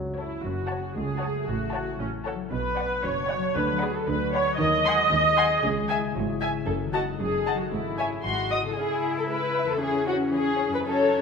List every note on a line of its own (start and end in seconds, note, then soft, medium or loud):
0.00 0.33 C#2 soft
0.00 0.37 F#2 soft
0.00 0.16 F#3 soft
0.00 1.30 A3 soft
0.00 0.78 C#4 soft
0.00 1.13 F#4 soft
0.17 0.42 E4 soft
0.17 0.37 F#4 soft
0.17 0.37 A4 soft
0.17 0.38 C#5 soft
0.44 0.85 F#1 medium
0.44 1.50 F#2 soft
0.44 0.86 F#2 medium
0.44 0.96 F#4 medium
0.62 1.51 C#3 soft
0.70 0.90 C#5 soft
0.70 0.90 F#5 soft
0.70 0.90 A5 soft
0.79 1.81 C#4 soft
0.96 1.38 C#2 medium
0.96 1.47 G#4 medium
0.96 2.55 A4 soft
1.14 1.98 F#4 soft
1.21 1.41 C#5 soft
1.21 1.41 F#5 soft
1.21 1.41 A5 soft
1.31 1.64 A3 soft
1.48 1.89 A1 medium
1.48 2.54 A2 soft
1.48 1.90 A2 soft
1.48 2.00 F#4 medium
1.65 2.54 A3 soft
1.74 1.94 C#5 soft
1.74 1.94 F#5 soft
1.74 1.93 A5 soft
1.82 2.16 C#4 soft
1.99 2.41 A1 medium
1.99 2.41 A2 medium
1.99 2.08 C#4 medium
1.99 3.02 F#4 soft
2.17 2.54 C#4 soft
2.26 2.34 A4 medium
2.26 2.46 C#5 soft
2.26 2.46 F#5 soft
2.26 2.45 A5 soft
2.35 3.37 F#3 soft
2.51 2.93 B1 medium
2.51 3.57 B2 soft
2.51 2.93 B2 medium
2.51 3.03 B4 medium
2.69 4.61 B3 soft
2.78 2.97 D5 medium
2.78 2.97 F#5 soft
2.78 2.97 F#5 medium
2.86 3.19 D4 soft
3.03 3.45 F#1 medium
3.03 3.45 F#2 medium
3.03 3.88 F#4 soft
3.03 3.56 C#5 medium
3.20 4.41 D4 soft
3.29 3.49 D5 medium
3.29 3.49 F#5 medium
3.38 3.71 F#3 soft
3.55 3.96 D2 medium
3.55 4.61 D3 soft
3.55 3.96 D3 medium
3.55 3.82 B4 medium
3.72 5.65 F#3 soft
3.81 3.94 G#4 medium
3.81 4.01 D5 medium
3.81 4.01 F#5 medium
3.81 4.01 B5 medium
3.90 4.24 F#4 soft
3.95 4.08 A4 medium
4.07 4.48 D2 medium
4.07 4.49 D3 medium
4.07 4.33 B4 medium
4.07 4.61 D5 soft
4.25 4.93 F#4 soft
4.34 4.59 C#5 medium
4.34 4.53 D5 medium
4.34 4.53 F#5 medium
4.34 4.54 B5 medium
4.42 4.61 D4 soft
4.59 5.00 D#2 medium
4.59 5.65 D#3 medium
4.59 5.00 D#3 medium
4.59 5.61 D#5 loud
4.77 5.79 G#3 soft
4.85 4.94 F#5 medium
4.85 4.94 G#5 medium
4.85 4.93 C6 soft
4.94 5.65 F#4 medium
5.11 5.52 D#2 medium
5.11 5.52 D#3 medium
5.11 5.65 C5 soft
5.30 6.31 G#4 soft
5.37 5.45 F#5 soft
5.37 5.45 G#5 medium
5.37 5.46 C6 soft
5.47 5.66 C4 soft
5.63 6.04 C#2 medium
5.63 6.04 C#3 medium
5.63 6.69 C#3 medium
5.63 5.89 G#4 medium
5.80 6.69 G#3 soft
5.90 5.98 E5 medium
5.90 5.98 G#5 soft
5.90 5.98 G#5 medium
5.98 6.69 E4 soft
6.15 6.56 G#1 medium
6.15 6.56 G#2 medium
6.15 6.69 C#5 soft
6.32 6.69 G#4 soft
6.41 6.49 E5 medium
6.41 6.49 G#5 soft
6.41 6.50 G#5 soft
6.51 6.70 C#4 soft
6.66 7.09 F#1 medium
6.66 7.09 F#2 medium
6.66 7.75 F#2 medium
6.66 6.74 A4 medium
6.85 7.74 D#3 soft
6.93 7.01 F#4 medium
6.93 7.02 D#5 soft
6.93 7.02 F#5 soft
6.93 7.02 A5 soft
7.02 7.74 D#4 soft
7.19 7.61 F#1 medium
7.19 7.61 F#2 medium
7.19 7.74 F#4 soft
7.19 7.58 G#4 medium
7.37 7.74 A4 soft
7.46 7.54 D#5 soft
7.46 7.54 F#5 soft
7.46 7.55 A5 soft
7.55 7.74 F#3 soft
7.59 7.72 F#4 medium
7.72 8.14 G#1 soft
7.72 8.24 G#2 soft
7.72 8.14 G#2 soft
7.72 8.24 E4 medium
7.90 8.27 C#4 soft
7.99 8.07 C#5 soft
7.99 8.07 E5 soft
7.99 8.08 G#5 soft
8.08 8.28 E4 soft
8.08 8.60 G#4 soft
8.25 8.67 G#1 medium
8.25 8.80 G#2 soft
8.25 8.67 G#2 soft
8.25 8.62 F#4 medium
8.25 8.50 C6 soft
8.43 8.80 C4 soft
8.51 8.59 D#5 soft
8.51 8.60 D#6 soft
8.60 9.76 C#3 soft
8.60 8.80 D#4 soft
8.60 8.73 G#4 soft
8.65 9.68 C#4 soft
8.65 8.78 A4 medium
8.69 9.72 E4 soft
8.74 9.19 C#4 medium
8.74 9.77 G#4 soft
8.74 9.16 G#4 medium
8.78 9.78 E4 soft
9.06 9.24 E5 soft
9.18 9.23 A4 soft
9.29 9.71 G#3 medium
9.29 9.68 B4 medium
9.56 9.76 E5 soft
9.64 10.79 E2 soft
9.69 10.71 C#4 soft
9.69 9.82 A4 medium
9.73 10.84 E4 soft
9.78 10.23 E3 medium
9.78 10.86 G#4 soft
9.78 10.07 G#4 medium
9.82 10.84 C#4 soft
10.08 10.16 F#4 medium
10.08 10.27 C#5 soft
10.34 10.75 E3 medium
10.34 10.72 G#4 medium
10.60 10.80 C#5 soft
10.68 11.21 F#2 soft
10.72 11.21 C#4 soft
10.72 10.79 B4 medium
10.77 11.21 D#4 soft
10.81 11.21 F#4 soft
10.86 11.21 F#3 soft
10.86 11.21 C#4 soft
10.86 11.21 A4 medium
10.86 11.21 C#5 soft